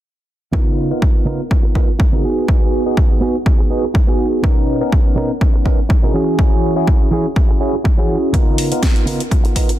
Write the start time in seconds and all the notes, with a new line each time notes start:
0.52 C#3 B3 D#4 F4 A#4, kick
0.91 B3 D#4 F4 A#4
1.02 kick
1.25 C#3 B3 D#4 F4 A#4
1.50 B3 D#4 F4 A#4, kick
1.63 muted clean electric guitar stroke
1.74 B3 D#4 F4 A#4, muted clean electric guitar stroke, kick
1.88 muted clean electric guitar stroke
1.99 muted clean electric guitar stroke, kick
2.12 C#3 B3 D#4 F4 F#4 G#4 A#4
2.23 B3 F#4 G#4
2.48 B3 D#4 F#4 G#4, kick
2.86 B3 D#4 F#4 G#4
2.97 kick
3.21 B3 D#4 F#4 G#4
3.45 B3 D#4 F#4 G#4, muted clean electric guitar stroke, kick
3.59 muted clean electric guitar stroke
3.70 B3 D#4 F#4 G#4, muted clean electric guitar stroke
3.83 muted clean electric guitar stroke
3.94 muted clean electric guitar stroke, kick
4.07 B3 D#4 F#4 G#4
4.43 B2 B3 C#4 D#4 A#4, kick
4.81 B3 C#4 D#4 A#4
4.92 kick
5.16 B2 B3 C#4 D#4 A#4
5.40 B3 C#4 D#4 A#4, muted clean electric guitar stroke, kick
5.54 muted clean electric guitar stroke
5.65 B3 C#4 D#4 A#4, muted clean electric guitar stroke, kick
5.78 muted clean electric guitar stroke
5.89 muted clean electric guitar stroke, kick
6.02 B2 C#4 D#4 E4 F#4 G#4 A#4
6.13 E3 C#4 F#4 G#4
6.38 C#4 E4 F#4 G#4, kick
6.76 C#4 E4 F#4 G#4
6.87 kick
7.11 E3 C#4 E4 F#4 G#4
7.35 muted clean electric guitar stroke, kick
7.49 muted clean electric guitar stroke
7.60 C#4 E4 F#4 G#4, muted clean electric guitar stroke
7.73 muted clean electric guitar stroke
7.84 muted clean electric guitar stroke, kick
7.97 E3 C#4 E4 F#4 G#4
8.33 C#3 B3 D#4 F4 A#4, kick, closed hi-hat
8.58 open hi-hat
8.71 B3 D#4 F4 A#4, closed hi-hat
8.83 kick, snare, closed hi-hat
8.96 closed hi-hat
9.06 C#3 B3 D#4 F4 A#4, open hi-hat
9.20 closed hi-hat
9.30 B3 D#4 F4 A#4, muted clean electric guitar stroke, kick, closed hi-hat
9.44 muted clean electric guitar stroke, closed hi-hat
9.55 B3 D#4 F4 A#4, muted clean electric guitar stroke, kick, open hi-hat
9.68 muted clean electric guitar stroke, closed hi-hat